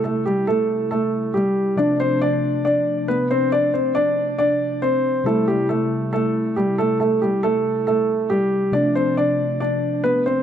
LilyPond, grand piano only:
\new Staff \with { instrumentName = "Grand piano" } { \time 4/4 \key d \dorian \tempo 4 = 138 <a a'>8 <g g'>8 <a a'>4 <a a'>4 <g g'>4 | <d' d''>8 <c' c''>8 <d' d''>4 <d' d''>4 <b b'>8 <c' c''>8 | <d' d''>8 <c' c''>8 <d' d''>4 <d' d''>4 <c' c''>4 | <a a'>8 <g g'>8 <a a'>4 <a a'>4 <g g'>8 <a a'>8 |
<a a'>8 <g g'>8 <a a'>4 <a a'>4 <g g'>4 | <d' d''>8 <c' c''>8 <d' d''>4 <d' d''>4 <b b'>8 <c' c''>8 | }